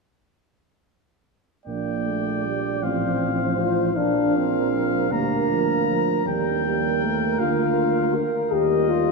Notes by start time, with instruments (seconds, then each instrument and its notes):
1.65 tuba A#1, trombone A#3, flugelhorn D5, trumpet G5
2.06 trombone A3
2.46 trombone G3
2.82 tuba A1, trombone F3, french horn C4, flugelhorn C5, trumpet F5
3.59 french horn F4
3.96 tuba A#1, trombone F3, french horn D4, flugelhorn A#4, trumpet F5
4.36 french horn C4
5.12 tuba D2, trombone G3, french horn A#3, trumpet A#5
5.50 trombone F3
5.88 trombone F3
6.25 tuba D#2, trombone G3, flugelhorn A#4, trumpet G5
6.65 trombone G3
7.04 trombone A3
7.39 tuba D2, trombone A#3, french horn F4, trumpet F5
8.15 french horn A#4
8.51 tuba D#2, trombone G3, french horn G4, trumpet D#5
8.89 french horn F4